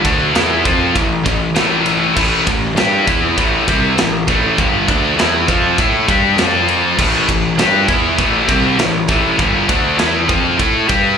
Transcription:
0.04 0.33 D2 medium
0.04 0.34 D3 medium
0.04 0.34 A3 medium
0.04 0.34 D4 loud
0.04 kick loud
0.04 ride medium
0.35 0.63 E2 loud
0.35 0.64 E3 medium
0.35 0.65 B3 medium
0.35 0.65 E4 medium
0.35 snare loud
0.35 ride loud
0.65 0.93 F2 medium
0.65 0.94 F3 medium
0.65 0.95 C4 medium
0.65 0.95 F4 loud
0.65 kick loud
0.65 ride medium
0.95 1.23 A1 medium
0.95 1.19 A2 medium
0.95 1.19 E3 medium
0.95 kick medium
0.95 ride medium
1.25 1.54 A1 medium
1.25 1.49 A2 medium
1.25 1.50 E3 medium
1.25 kick medium
1.25 ride medium
1.55 2.12 A1 loud
1.55 2.14 A2 medium
1.55 2.15 E3 loud
1.55 2.16 A3 loud
1.55 snare loud
1.55 ride loud
1.86 ride medium
2.16 2.45 A1 loud
2.16 2.45 A2 loud
2.16 2.45 E3 loud
2.16 2.46 A3 loud
2.16 kick loud
2.16 crash medium
2.46 2.74 A1 medium
2.46 2.70 A2 medium
2.46 2.71 E3 medium
2.46 kick loud
2.46 ride medium
2.75 3.04 G2 loud
2.75 3.06 G3 medium
2.75 3.06 D4 medium
2.75 3.07 G4 loud
2.75 snare loud
2.75 ride loud
3.07 3.35 E2 loud
3.07 3.36 E3 medium
3.07 3.37 B3 medium
3.07 3.37 E4 loud
3.07 kick loud
3.07 ride medium
3.37 3.65 A1 medium
3.37 3.66 A2 loud
3.37 3.66 E3 medium
3.37 3.67 A3 medium
3.37 kick loud
3.37 ride loud
3.68 3.96 C2 medium
3.68 3.97 C3 medium
3.68 3.97 G3 medium
3.68 3.97 C4 loud
3.68 kick loud
3.68 ride medium
3.97 4.25 A1 medium
3.97 4.22 A2 medium
3.97 4.22 E3 medium
3.97 snare loud
3.97 ride loud
4.28 4.56 A1 loud
4.28 4.57 A2 medium
4.28 4.57 E3 medium
4.28 4.58 A3 loud
4.28 kick loud
4.28 ride medium
4.58 4.86 G1 loud
4.58 4.87 G2 loud
4.58 4.87 D3 loud
4.58 4.88 G3 loud
4.58 kick loud
4.58 ride medium
4.88 5.15 D2 loud
4.88 5.17 D3 medium
4.88 5.18 A3 medium
4.88 5.18 D4 loud
4.88 kick loud
4.88 ride medium
5.16 5.45 E2 loud
5.16 5.47 E3 medium
5.16 5.48 B3 loud
5.16 5.48 E4 medium
5.16 snare loud
5.16 ride loud
5.48 5.76 F2 medium
5.48 5.78 F3 loud
5.48 5.78 C4 loud
5.48 5.78 F4 loud
5.48 kick loud
5.48 ride medium
5.78 6.06 A2 medium
5.78 6.07 A3 medium
5.78 6.08 E4 medium
5.78 6.08 A4 loud
5.78 kick loud
5.78 ride loud
6.08 6.35 G2 loud
6.08 6.38 G3 medium
6.08 6.38 D4 loud
6.08 6.38 G4 loud
6.08 kick loud
6.08 ride medium
6.36 6.93 F2 loud
6.36 6.98 F3 loud
6.36 6.98 C4 loud
6.36 snare loud
6.36 ride loud
6.40 6.98 F4 loud
6.68 ride medium
6.98 7.26 A1 loud
6.98 7.27 A2 loud
6.98 7.27 E3 loud
6.98 7.28 A3 loud
6.98 kick loud
6.98 crash loud
7.28 7.57 A1 medium
7.28 7.52 A2 medium
7.28 7.53 E3 medium
7.28 kick medium
7.28 ride medium
7.58 7.86 G2 loud
7.58 7.88 G3 medium
7.58 7.88 D4 medium
7.58 7.88 G4 loud
7.58 snare loud
7.58 ride loud
7.88 8.16 E2 loud
7.88 8.18 E3 medium
7.88 8.18 B3 loud
7.88 8.18 E4 loud
7.88 kick loud
7.88 ride medium
8.18 8.47 A1 medium
8.18 8.48 A2 medium
8.18 8.48 E3 loud
8.18 8.48 A3 loud
8.18 kick loud
8.18 ride loud
8.48 8.77 C2 medium
8.48 8.77 C3 loud
8.48 8.78 G3 loud
8.48 8.78 C4 loud
8.48 kick loud
8.48 ride medium
8.79 9.07 A1 medium
8.79 9.03 A2 medium
8.79 9.03 E3 medium
8.79 snare loud
8.79 ride loud
9.08 9.37 A1 loud
9.08 9.38 A2 medium
9.08 9.38 E3 medium
9.08 9.38 A3 loud
9.08 kick loud
9.08 ride medium
9.38 9.67 G1 loud
9.38 9.68 G2 loud
9.38 9.66 D3 loud
9.38 9.68 G3 loud
9.38 kick loud
9.38 ride loud
9.68 9.97 D2 loud
9.68 9.97 D3 medium
9.68 9.98 A3 medium
9.68 9.98 D4 medium
9.68 kick loud
9.68 ride medium
9.98 10.28 E2 loud
9.98 10.27 E3 loud
9.98 10.28 B3 loud
9.98 10.28 E4 loud
9.98 snare loud
9.98 ride medium
10.28 10.57 F2 loud
10.28 10.58 F3 loud
10.28 10.57 C4 loud
10.28 10.57 F4 loud
10.28 kick loud
10.28 ride medium
10.57 10.87 A2 medium
10.57 10.87 A3 loud
10.57 10.88 E4 medium
10.57 10.88 A4 loud
10.57 kick loud
10.57 ride medium
10.87 11.17 G2 loud
10.87 11.17 G3 medium
10.87 11.18 D4 medium
10.87 11.18 G4 loud
10.87 kick loud
10.87 ride medium

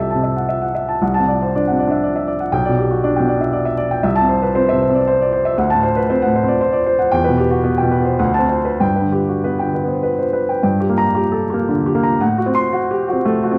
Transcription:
0.00 0.99 C2 soft
0.00 0.15 C3 soft
0.00 1.04 G4 soft
0.00 1.04 A4 soft
0.00 0.24 E5 soft
0.00 0.10 A5 soft
0.10 0.31 A5 soft
0.15 0.42 C3 soft
0.24 0.44 E5 soft
0.37 0.49 F#5 soft
0.49 0.70 E5 soft
0.62 0.75 F#5 soft
0.75 0.96 E5 soft
0.89 1.02 A5 soft
1.02 2.48 C2 soft
1.02 1.23 F#5 soft
1.14 1.36 A5 medium
1.19 1.48 C3 soft
1.28 1.49 D5 soft
1.42 1.55 C5 soft
1.55 1.81 D4 soft
1.55 1.75 D5 soft
1.67 1.97 C3 soft
1.67 1.87 F#5 soft
1.79 1.98 D5 soft
1.88 2.13 D4 soft
1.88 2.03 E5 soft
2.04 2.23 D5 soft
2.16 2.28 E5 soft
2.28 2.47 D5 soft
2.40 2.52 F#5 soft
2.52 3.99 B1 soft
2.52 2.72 G5 medium
2.65 2.96 B2 soft
2.65 2.85 D5 soft
2.78 2.98 G4 soft
2.90 3.03 F#4 soft
3.04 3.30 D4 soft
3.04 3.24 D5 soft
3.16 3.46 B2 soft
3.16 3.36 G5 soft
3.28 3.48 D5 soft
3.37 3.63 D4 soft
3.41 3.53 E5 soft
3.53 3.73 D5 soft
3.65 3.78 E5 soft
3.78 3.98 D5 soft
3.91 4.04 G5 soft
4.03 5.54 C2 medium
4.03 4.24 E5 soft
4.16 4.37 A5 medium
4.21 4.49 C3 soft
4.29 4.50 C5 soft
4.42 4.56 B4 soft
4.55 4.83 C4 soft
4.55 4.76 C5 medium
4.69 5.00 C3 soft
4.69 4.89 E5 soft
4.82 5.02 C5 soft
4.90 5.17 C4 soft
4.94 5.07 D5 soft
5.07 5.27 C5 medium
5.21 5.33 D5 soft
5.33 5.53 C5 medium
5.45 5.58 E5 medium
5.58 7.09 D2 medium
5.58 5.78 F#5 soft
5.70 5.91 A5 medium
5.75 6.02 A2 soft
5.83 6.04 C5 medium
5.96 6.09 B4 soft
6.10 6.37 C4 medium
6.10 6.30 C5 medium
6.22 6.43 F#5 medium
6.26 6.54 A2 soft
6.36 6.56 C5 medium
6.43 6.71 C4 soft
6.48 6.61 D5 soft
6.61 6.82 C5 medium
6.73 6.86 D5 soft
6.86 7.07 C5 medium
6.99 7.12 F#5 medium
7.12 8.17 E2 medium
7.12 7.33 G5 medium
7.24 7.46 B4 medium
7.29 7.58 B2 soft
7.38 7.59 G4 medium
7.51 7.65 F#4 soft
7.64 7.94 B3 soft
7.64 7.86 B4 soft
7.78 8.00 G5 soft
7.82 8.13 B2 soft
7.91 8.14 B4 soft
8.00 8.20 B3 soft
8.05 8.20 C5 soft
8.19 8.79 D2 medium
8.19 8.43 F#5 medium
8.34 8.59 A5 medium
8.39 8.73 C4 soft
8.49 8.75 C5 soft
8.65 8.81 B4 soft
8.80 10.58 G2 soft
8.80 9.07 G5 medium
8.96 9.22 B4 soft
9.01 9.35 D3 soft
9.12 9.38 G4 soft
9.29 9.44 F#4 soft
9.44 9.76 B3 soft
9.44 9.68 B4 soft
9.59 9.95 D3 soft
9.59 9.83 G5 soft
9.74 9.98 B4 soft
9.84 10.15 B3 soft
9.88 10.03 C5 soft
10.03 10.27 B4 soft
10.19 10.34 C5 soft
10.33 10.57 B4 soft
10.49 10.62 G5 soft
10.63 12.17 G2 soft
10.63 10.91 G5 soft
10.80 11.08 G4 soft
10.90 11.10 A#3 soft
10.98 11.25 A#5 medium
11.15 11.43 G4 medium
11.32 11.50 A4 soft
11.50 11.76 A#3 soft
11.50 11.79 G4 soft
11.69 11.97 D3 soft
11.86 12.14 G4 soft
11.95 12.15 A#3 soft
12.03 12.20 A#5 medium
12.21 13.58 A2 medium
12.21 12.48 F#5 medium
12.38 12.66 F#4 soft
12.46 12.68 C4 soft
12.55 12.84 C6 medium
12.73 13.01 F#4 medium
12.91 13.09 G4 soft
13.08 13.37 F#4 medium
13.12 13.34 C4 soft
13.25 13.54 A3 medium
13.43 13.58 F#4 medium
13.51 13.58 C4 medium

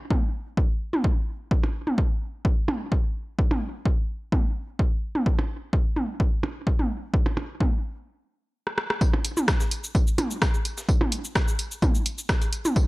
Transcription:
0.10 kick loud
0.10 high tom soft
0.57 kick loud
0.93 high tom soft
1.04 kick loud
1.51 kick loud
1.64 percussion blips medium
1.87 high tom soft
1.98 kick loud
2.45 kick loud
2.68 high tom soft
2.68 percussion blips medium
2.92 kick loud
3.39 kick loud
3.51 high tom soft
3.51 percussion blips medium
3.85 kick loud
4.32 kick loud
4.32 high tom soft
4.79 kick medium
5.15 high tom soft
5.26 kick loud
5.39 percussion blips medium
5.73 kick loud
5.96 high tom soft
6.20 kick loud
6.43 percussion blips medium
6.67 kick medium
6.79 high tom soft
7.14 kick loud
7.26 percussion blips medium
7.37 percussion blips medium
7.60 kick loud
7.60 high tom soft
8.67 cross-stick soft
8.78 cross-stick medium
8.90 cross-stick medium
9.01 kick loud
9.01 tambourine medium
9.14 percussion blips medium
9.25 closed hi-hat medium
9.25 tambourine medium
9.37 high tom soft
9.37 cabasa medium
9.48 kick loud
9.48 cross-stick loud
9.48 snare loud
9.48 tambourine medium
9.60 snare medium
9.60 cabasa soft
9.71 closed hi-hat medium
9.71 tambourine medium
9.84 cabasa medium
9.95 kick loud
9.95 tambourine medium
10.07 cabasa soft
10.18 closed hi-hat medium
10.18 high tom soft
10.18 tambourine medium
10.18 percussion blips medium
10.31 cabasa medium
10.42 kick loud
10.42 cross-stick loud
10.42 snare loud
10.42 tambourine medium
10.54 cabasa soft
10.65 closed hi-hat medium
10.65 tambourine medium
10.78 snare medium
10.78 cabasa medium
10.89 kick loud
10.89 tambourine medium
11.01 high tom soft
11.01 percussion blips medium
11.12 closed hi-hat loud
11.12 tambourine medium
11.25 cabasa medium
11.35 kick loud
11.35 cross-stick loud
11.35 snare loud
11.35 tambourine medium
11.48 cabasa soft
11.59 closed hi-hat medium
11.59 tambourine medium
11.71 cabasa medium
11.82 kick loud
11.82 high tom soft
11.82 tambourine medium
11.95 cabasa soft
12.06 closed hi-hat medium
12.06 tambourine medium
12.18 cabasa medium
12.29 kick loud
12.29 cross-stick medium
12.29 snare loud
12.29 tambourine medium
12.42 closed hi-hat soft
12.42 cabasa soft
12.53 closed hi-hat medium
12.53 tambourine medium
12.65 high tom soft
12.65 cabasa medium
12.76 kick loud
12.76 tambourine medium

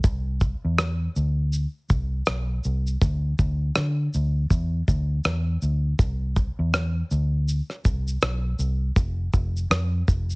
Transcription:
0.04 0.53 C2 medium
0.04 kick loud
0.04 shaker medium
0.41 kick medium
0.41 shaker soft
0.65 1.07 E2 medium
0.78 cross-stick loud
0.78 shaker medium
1.16 1.65 D2 medium
1.16 shaker soft
1.53 shaker medium
1.90 2.21 C2 medium
1.90 kick medium
1.90 shaker soft
2.26 2.58 B1 medium
2.26 cross-stick loud
2.26 shaker medium
2.64 2.95 C2 medium
2.64 shaker soft
2.87 shaker soft
3.02 3.32 D2 medium
3.02 kick loud
3.02 shaker medium
3.39 3.69 D2 medium
3.39 kick medium
3.39 shaker soft
3.76 4.07 D3 medium
3.76 cross-stick loud
3.76 shaker medium
4.14 4.45 D2 medium
4.14 shaker soft
4.50 4.81 E2 medium
4.50 kick medium
4.50 shaker medium
4.88 5.19 D2 medium
4.88 kick medium
4.88 shaker soft
5.25 5.56 E2 loud
5.25 cross-stick loud
5.25 shaker medium
5.62 5.93 D2 medium
5.62 shaker soft
5.99 6.48 C2 medium
5.99 kick loud
5.99 shaker medium
6.36 kick medium
6.36 shaker soft
6.59 7.02 E2 medium
6.74 cross-stick loud
6.74 shaker medium
7.11 7.60 D2 medium
7.11 shaker soft
7.49 shaker medium
7.70 cross-stick soft
7.85 8.16 C2 medium
7.85 kick medium
7.85 shaker soft
8.08 shaker medium
8.22 8.53 B1 loud
8.22 cross-stick loud
8.22 shaker medium
8.59 8.90 C2 medium
8.59 shaker medium
8.96 9.27 F1 loud
8.96 kick loud
8.96 shaker medium
9.33 9.64 F1 medium
9.33 kick medium
9.33 shaker soft
9.57 shaker soft
9.71 10.01 F2 loud
9.71 cross-stick loud
9.71 shaker medium
10.08 10.36 F1 medium
10.08 kick medium
10.08 shaker soft
10.30 shaker soft

